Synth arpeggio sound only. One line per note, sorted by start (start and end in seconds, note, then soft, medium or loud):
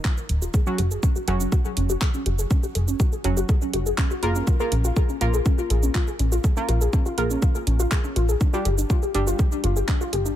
0.05 0.17 F4 loud
0.17 0.22 A#4 medium
0.29 0.41 D#4 medium
0.42 0.53 F4 loud
0.54 0.59 G#4 medium
0.67 0.78 C#4 medium
0.78 0.91 F#4 loud
0.91 0.96 G#4 medium
1.03 1.15 C#4 medium
1.16 1.27 F#4 loud
1.28 1.33 G#4 medium
1.40 1.52 C#4 medium
1.52 1.64 F#4 loud
1.65 1.70 G#4 medium
1.77 1.89 C#4 medium
1.90 2.01 F#4 loud
2.01 2.07 G#4 medium
2.14 2.25 C#4 medium
2.26 2.38 F#4 loud
2.39 2.44 G#4 medium
2.51 2.63 C#4 medium
2.63 2.75 F#4 loud
2.75 2.80 G#4 medium
2.88 2.99 C#4 medium
3.00 3.12 F#4 loud
3.12 3.17 G#4 medium
3.24 3.36 C#4 medium
3.37 3.48 F#4 loud
3.49 3.54 G#4 medium
3.62 3.73 C#4 medium
3.74 3.86 F#4 loud
3.86 3.91 G#4 medium
3.98 4.10 C#4 medium
4.11 4.22 F#4 loud
4.23 4.28 G#4 medium
4.35 4.47 C#4 medium
4.47 4.59 F4 loud
4.60 4.65 G#4 medium
4.72 4.84 C#4 medium
4.85 4.96 F4 loud
4.97 5.02 G#4 medium
5.09 5.20 C#4 medium
5.21 5.33 F4 loud
5.34 5.39 G#4 medium
5.46 5.58 C#4 medium
5.58 5.70 F4 loud
5.70 5.76 G#4 medium
5.83 5.94 C#4 medium
5.95 6.07 F4 loud
6.08 6.12 G#4 medium
6.19 6.32 C#4 medium
6.32 6.43 F4 loud
6.44 6.49 G#4 medium
6.57 6.68 C#4 medium
6.69 6.81 F4 loud
6.81 6.86 G#4 medium
6.93 7.05 C#4 medium
7.06 7.17 F4 loud
7.18 7.23 G#4 medium
7.31 7.42 C#4 medium
7.42 7.54 F4 loud
7.55 7.60 G#4 medium
7.67 7.79 C#4 medium
7.80 7.91 F4 loud
7.92 7.97 G#4 medium
8.04 8.16 C#4 medium
8.16 8.28 F4 loud
8.29 8.34 G#4 medium
8.41 8.53 D4 medium
8.53 8.65 F4 loud
8.65 8.71 G4 medium
8.78 8.89 D4 medium
8.90 9.02 F4 loud
9.03 9.08 G4 medium
9.15 9.27 D4 medium
9.27 9.39 F4 loud
9.39 9.44 G4 medium
9.52 9.63 D4 medium
9.64 9.76 F4 loud
9.76 9.81 G4 medium
9.88 10.00 D4 medium
10.01 10.12 F4 loud
10.13 10.18 G4 medium
10.26 10.36 D4 medium